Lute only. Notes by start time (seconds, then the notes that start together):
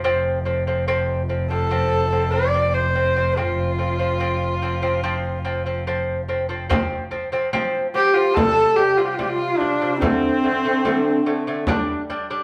0.04 F3 C4
0.45 F3 C4
0.67 F3 C4
0.88 F3 C4
1.29 F3 C4
1.50 F3 C4
1.71 F3 C4
2.12 F3 C4
2.33 F3 C4
2.54 F3 C4
2.95 F3 C4
3.16 F3 C4
3.37 F3 C4
3.78 F3 C4
3.99 F3 C4
4.20 F3 C4
4.62 F3 C4
4.82 F3 C4
5.03 F3 C4
5.45 F3 C4
5.66 F3 C4
5.87 F3 C4
6.29 F3 C4
6.49 F3 C4
6.69 F3 C4
7.11 F3 C4
7.32 F3 C4
7.53 F3 C4
7.94 F3 C4
8.16 F3 C4
8.36 C3 G3
8.77 C3 G3
8.98 C3 G3
9.19 C3 G3
9.60 C3 G3
9.81 C3 G3
10.01 D3 A3
10.44 D3 A3
10.65 D3 A3
10.85 D3 A3
11.26 D3 A3
11.47 D3 A3
11.68 G3 D4
12.10 G3 D4
12.30 G3 D4